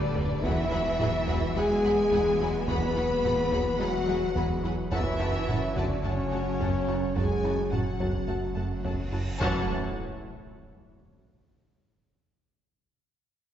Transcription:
Already playing: sub bass D1, cello section D3, viola section G3 A4, analog synth pad A3 B3 A4 B4, french horn section D4, violin section D5 B5
0.16 analog synth bass D2, double bass section D2, viola section G3, synth arpeggio sound G4, taiko low
0.42 sub bass E1, analog synth bass E2, double bass section E2, cello section E3, synth arpeggio sound E3, analog synth pad F#3 G#3 F#4 B4, viola section F#3 G#4, french horn section E4, violin section E5 F#5 B5, taiko
0.71 analog synth bass E2, viola section F#3 G#4, synth arpeggio sound E4, violin section F#5 B5
0.99 double bass section E2, analog synth bass E2, viola section F#3 G#4, violin section F#5 B5, taiko low-mid
1.27 analog synth bass E2, synth arpeggio sound E3, viola section F#3 G#4, violin section F#5 B5, taiko
1.55 double bass section E2, analog synth bass E2, viola section F#3 G#4, cello section G#3, synth arpeggio sound G#3, french horn section G#4, violin section F#5 G#5 B5
1.83 analog synth bass E2, viola section F#3 G#4, synth arpeggio sound G#3, violin section F#5 B5
2.11 double bass section E2, analog synth bass E2, synth arpeggio sound E3, viola section F#3 G#4, violin section F#5 B5, taiko
2.39 analog synth bass E2, viola section F#3 G#4, synth arpeggio sound E4, violin section F#5 B5
2.67 double bass section E2, analog synth bass E2, synth arpeggio sound E3, viola section F#3 G#4, cello section B3, french horn section B4, violin section F#5 B5, taiko
2.95 analog synth bass E2, viola section F#3 G#4, synth arpeggio sound E4, violin section F#5 B5
3.23 double bass section E2, analog synth bass E2, viola section F#3 G#4, violin section F#5 B5, taiko low-mid
3.51 analog synth bass E2, synth arpeggio sound E3, viola section F#3 G#4, violin section F#5 B5, taiko
3.79 double bass section E2, analog synth bass E2, cello section F#3, viola section F#3 G#4, synth arpeggio sound G#3, french horn section F#4, violin section F#5 B5
4.07 analog synth bass E2, viola section F#3 G#4, synth arpeggio sound G#3, violin section F#5 B5
4.35 double bass section E2, analog synth bass E2, synth arpeggio sound E3, viola section F#3 G#4, violin section F#5 B5, taiko
4.64 analog synth bass E2, viola section F#3 G#4, synth arpeggio sound E4, violin section F#5 B5
4.91 sub bass F#1, double bass section F#2, analog synth bass F#2, cello section E3, synth arpeggio sound F#3, analog synth pad F#3 C#4 F#4 C#5, viola section F#3 F#4, french horn section E4, violin section E5 F#5 A5, taiko
5.20 analog synth bass F#2, viola section F#3 F#4, synth arpeggio sound E4, violin section F#5 A5, taiko rim
5.47 double bass section F#2, analog synth bass F#2, viola section F#3 F#4, violin section F#5 A5, taiko low-mid
5.76 analog synth bass F#2, cello section D3, synth arpeggio sound F#3, viola section F#3 F#4, french horn section D4, violin section D5 F#5 A5, taiko
6.03 double bass section F#2, analog synth bass F#2, cello section C#3, viola section F#3 F#4, synth arpeggio sound A3, french horn section C#4, violin section C#5 F#5 A5
6.32 analog synth bass F#2, viola section F#3 F#4, synth arpeggio sound A3, violin section F#5 A5
6.60 analog synth bass F#2, double bass section F#2, viola section F#3 F#4, synth arpeggio sound F#3, violin section F#5 A5, taiko
6.88 analog synth bass F#2, viola section F#3 F#4, synth arpeggio sound E4, violin section F#5 A5, taiko rim
7.16 analog synth bass F#2, double bass section F#2, viola section F#3 F#4, synth arpeggio sound F#3, cello section G#3, french horn section G#4, violin section F#5 G#5 A5, taiko, reverse cymbal
7.43 analog synth bass F#2, viola section F#3 F#4, synth arpeggio sound E4, violin section F#5 A5, taiko rim
7.71 double bass section F#2, analog synth bass F#2, cello section F#3, viola section F#3 F#4, french horn section F#4, violin section F#5 A5, taiko low-mid
8.00 analog synth bass F#2, synth arpeggio sound F#3, viola section F#3 F#4, violin section F#5 A5, taiko
8.27 analog synth bass F#2, double bass section F#2, viola section F#3 F#4, synth arpeggio sound A3, violin section F#5 A5
8.56 analog synth bass F#2, viola section F#3 F#4, synth arpeggio sound A3, violin section F#5 A5
8.84 analog synth bass F#2, double bass section F#2, viola section F#3 F#4, synth arpeggio sound F#3, violin section F#5 A5, taiko
9.11 analog synth bass F#2, viola section F#3 F#4, synth arpeggio sound E4, violin section F#5 A5
9.39 sub bass F#1, double bass section F#2, viola section E3 F#4, cello section F#3, analog synth pad F#3 A3 E4 C#5, french horn section F#4, violin section C#5 F#5 A5, taiko low, impact

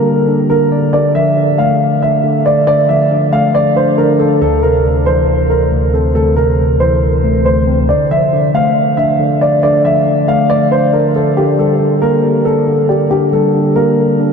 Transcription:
Already playing: tine electric piano D3 G3 A#3 D4 D5, grand piano A#4
0.28 tine electric piano D4
0.50 tine electric piano D3, grand piano A#4
0.72 tine electric piano D5
0.93 tine electric piano D3, grand piano D5
1.15 tine electric piano F3, grand piano E5
1.37 tine electric piano D3
1.58 tine electric piano A3, grand piano F5
2.02 tine electric piano D4, grand piano E5
2.24 tine electric piano D3
2.45 tine electric piano D5, grand piano D5
2.67 tine electric piano D3, grand piano D5
2.89 tine electric piano F3, grand piano E5
3.11 tine electric piano D3
3.32 tine electric piano A3, grand piano F5
3.55 grand piano D5
3.76 tine electric piano D4, grand piano C5
3.98 tine electric piano D3, grand piano A#4
4.19 grand piano A4, tine electric piano D5
4.41 tine electric piano D2, grand piano A4
4.63 tine electric piano C3, grand piano A#4
4.85 tine electric piano D2
5.06 tine electric piano E3, grand piano C5
5.50 grand piano A#4
5.72 tine electric piano D2
5.93 tine electric piano C4, grand piano A4
6.15 tine electric piano D2, grand piano A4
6.37 tine electric piano C3, grand piano A#4
6.59 tine electric piano D2
6.80 tine electric piano E3, grand piano C5
7.24 tine electric piano A3
7.45 tine electric piano D2, grand piano C5
7.67 tine electric piano C4
7.89 tine electric piano D3, grand piano D5
8.11 tine electric piano F3, grand piano E5
8.32 tine electric piano D3
8.54 tine electric piano A3, grand piano F5
8.97 tine electric piano D4, grand piano E5
9.19 tine electric piano D3
9.41 grand piano D5, tine electric piano D5
9.63 tine electric piano D3, grand piano D5
9.84 tine electric piano F3, grand piano E5
10.06 tine electric piano D3
10.28 tine electric piano A3, grand piano F5
10.50 grand piano D5
10.71 tine electric piano D4, grand piano C5
10.93 tine electric piano D3, grand piano A#4
11.15 grand piano A4, tine electric piano D5
11.37 tine electric piano D3, grand piano G4
11.59 tine electric piano G3, grand piano A4
11.80 tine electric piano D3
12.02 tine electric piano A#3, grand piano A#4
12.45 tine electric piano D4, grand piano A4
12.67 tine electric piano D3
12.89 grand piano G4, tine electric piano D5
13.11 tine electric piano D3, grand piano G4
13.32 tine electric piano G3, grand piano A4
13.54 tine electric piano D3
13.76 tine electric piano A#3, grand piano A#4
14.19 tine electric piano D4

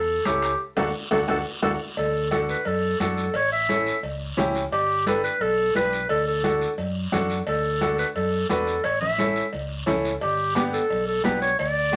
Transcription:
Already playing: fingered electric bass E2, clarinet A4
0.25 fingered electric bass C#2, upright piano C#4 E4 A4, clarinet G4, high conga, high timbale, short guiro
0.42 high timbale, short guiro
0.77 fingered electric bass D2, upright piano D4 F#4 A4, clarinet A4, high conga, high timbale, long guiro
1.11 fingered electric bass D2, upright piano D4 F#4 A4, clarinet A4, high conga, high timbale, long guiro
1.28 fingered electric bass D2, upright piano D4 F#4 A4, clarinet A4, high conga, high timbale, long guiro
1.62 fingered electric bass D2, upright piano D4 F#4 A4, clarinet A4, high conga, high timbale
1.97 fingered electric bass D2, clarinet A4, cowbell, high conga, long guiro
2.31 upright piano D4 F#4 A4, clarinet A4, cowbell, high conga, short guiro
2.49 clarinet B4, short guiro
2.65 fingered electric bass F#2, clarinet A4, cowbell, high conga, long guiro
3.00 fingered electric bass F#2, upright piano D4 F#4 A4, clarinet A4, cowbell, high conga, short guiro
3.17 short guiro
3.34 fingered electric bass A1, clarinet C#5, cowbell, high conga, long guiro
3.53 clarinet E5
3.69 upright piano C#4 E4 A4, cowbell, high conga, short guiro
3.87 short guiro
4.03 fingered electric bass C#2, cowbell, high conga, long guiro
4.37 fingered electric bass C#2, upright piano C#4 E4 G4, cowbell, high conga, low conga, low timbale, short guiro
4.55 short guiro
4.72 fingered electric bass G1, clarinet G4, cowbell, high conga, long guiro
5.06 upright piano D4 G4 B4, clarinet A4, cowbell, high conga, short guiro
5.24 clarinet B4, short guiro
5.40 fingered electric bass B1, clarinet A4, cowbell, high conga, long guiro
5.75 fingered electric bass B1, upright piano D4 G4 B4, clarinet B4, cowbell, high conga, short guiro
5.93 short guiro
6.09 fingered electric bass D2, clarinet A4, cowbell, high conga, long guiro
6.27 clarinet A4
6.43 upright piano D4 F#4 A4, cowbell, high conga, short guiro
6.61 short guiro
6.78 fingered electric bass F#2, cowbell, high conga, long guiro
7.12 fingered electric bass F#2, upright piano D4 F#4 A4, cowbell, high conga, low conga, short guiro
7.30 short guiro
7.47 fingered electric bass D2, clarinet A4, cowbell, high conga, long guiro
7.81 upright piano D4 F#4 A4, clarinet A4, cowbell, high conga, short guiro
7.98 clarinet B4, short guiro
8.15 fingered electric bass F#2, clarinet A4, cowbell, high conga, long guiro
8.49 fingered electric bass E2, upright piano D4 F#4 B4, clarinet A4, cowbell, high conga, short guiro
8.67 short guiro
8.84 fingered electric bass A1, clarinet C#5, cowbell, high conga, long guiro
9.01 clarinet E5, low conga
9.18 upright piano C#4 E4 A4, cowbell, high conga, short guiro
9.36 short guiro
9.53 fingered electric bass C#2, cowbell, high conga, long guiro
9.86 fingered electric bass C#2, upright piano C#4 E4 A4, cowbell, high conga, low conga, short guiro
10.05 short guiro
10.21 fingered electric bass G1, clarinet G4, cowbell, high conga, long guiro
10.55 upright piano B3 D4 G4, clarinet G4, cowbell, high conga, short guiro
10.73 clarinet A4, short guiro
10.90 fingered electric bass B1, cowbell, high conga, long guiro
11.07 clarinet A4
11.24 fingered electric bass B1, upright piano B3 D4 G4, clarinet B4, cowbell, high conga, low timbale, short guiro
11.42 clarinet C#5, short guiro
11.59 fingered electric bass D2, clarinet D5, cowbell, high conga, long guiro
11.92 upright piano A3 D4

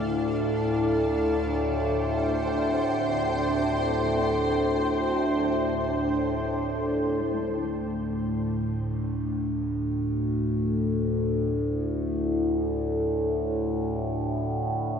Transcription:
Already playing: synth drone D2 A2, ambient pad D4 A4 D5 F5
0.69 ambient pad G5
0.99 ambient pad C5
7.22 synth drone D2 A2

